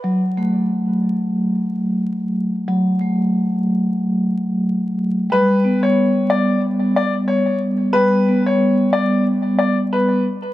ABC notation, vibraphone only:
X:1
M:4/4
L:1/8
Q:"Swing 16ths" 1/4=91
K:Glyd
V:1 name="Vibraphone" clef=bass
F, A,4- A, z2 | F, A,4- A, z2 | G, B,4- B, z2 | G, B,4- B, z2 |]